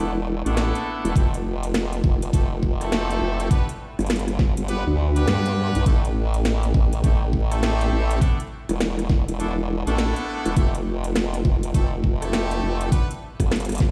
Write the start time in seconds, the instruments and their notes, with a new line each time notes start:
Already playing: wobble bass E1, horn section A3 B3 D4 E4 A4
0.45 wobble bass A1, horn section A3 B3 D4 E4 A4, closed hi-hat
0.57 snare, closed hi-hat
0.75 closed hi-hat
1.05 wobble bass E1, closed hi-hat
1.15 wobble bass F1, horn section A3 C4 E4 G4 A4, kick, closed hi-hat
1.34 closed hi-hat
1.63 closed hi-hat
1.74 snare, closed hi-hat
1.93 closed hi-hat
2.04 wobble bass F1, kick
2.22 closed hi-hat
2.33 wobble bass F1, horn section A3 C4 E4 G4 A4, kick, closed hi-hat
2.63 kick
2.81 horn section A3 C4 E4 G4 A4, cross-stick, closed hi-hat
2.92 snare, closed hi-hat
3.11 closed hi-hat
3.22 wobble bass F1
3.40 closed hi-hat
3.51 horn section B3 D4 G4 B4, kick, closed hi-hat
3.69 closed hi-hat
3.99 wobble bass G1, cross-stick, closed hi-hat
4.00 closed hi-hat
4.06 snare, closed hi-hat
4.10 closed hi-hat
4.16 closed hi-hat
4.19 closed hi-hat
4.28 cross-stick, closed hi-hat
4.39 kick, snare
4.57 wobble bass G1, closed hi-hat
4.68 horn section B3 D4 G4 B4, closed hi-hat
4.87 wobble bass D2
5.16 horn section B3 D4 G4 B4, closed hi-hat
5.28 wobble bass G2, snare, closed hi-hat
5.46 closed hi-hat
5.75 wobble bass B1, closed hi-hat
5.86 wobble bass A1, horn section A3 C4 E4 G4 A4, kick, closed hi-hat
6.05 closed hi-hat
6.34 closed hi-hat
6.45 snare, closed hi-hat
6.63 closed hi-hat
6.74 wobble bass A1, kick
6.93 closed hi-hat
7.03 wobble bass A1, horn section A3 C4 E4 G4 A4, kick, closed hi-hat
7.33 kick
7.51 horn section A3 C4 E4 G4 A4, cross-stick, closed hi-hat
7.63 snare, closed hi-hat
7.81 closed hi-hat
7.92 wobble bass A1
8.11 closed hi-hat
8.21 horn section A3 B3 D4 E4 A4, kick, closed hi-hat
8.40 closed hi-hat
8.69 wobble bass E1, cross-stick, closed hi-hat
8.81 snare, closed hi-hat
8.99 cross-stick, closed hi-hat
9.10 kick, snare
9.28 wobble bass E1, closed hi-hat
9.39 horn section A3 B3 D4 E4 A4, closed hi-hat
9.86 wobble bass A1, horn section A3 B3 D4 E4 A4, closed hi-hat
9.98 snare, closed hi-hat
10.16 closed hi-hat
10.46 wobble bass E1, closed hi-hat
10.56 wobble bass F1, horn section A3 C4 E4 G4 A4, kick, closed hi-hat
10.75 closed hi-hat
11.04 closed hi-hat
11.16 snare, closed hi-hat
11.34 closed hi-hat
11.45 wobble bass F1, kick
11.63 closed hi-hat
11.74 wobble bass F1, horn section A3 C4 E4 G4 A4, kick, closed hi-hat
12.04 kick
12.21 horn section A3 C4 E4 G4 A4, cross-stick, closed hi-hat
12.33 snare, closed hi-hat
12.51 closed hi-hat
12.63 wobble bass F1
12.81 closed hi-hat
12.92 horn section B3 D4 G4 B4, kick, closed hi-hat
13.11 closed hi-hat
13.40 wobble bass G1, kick, cross-stick, closed hi-hat
13.51 snare, closed hi-hat
13.56 closed hi-hat
13.60 closed hi-hat
13.65 closed hi-hat
13.69 cross-stick, closed hi-hat
13.72 closed hi-hat
13.75 closed hi-hat
13.78 kick, snare, closed hi-hat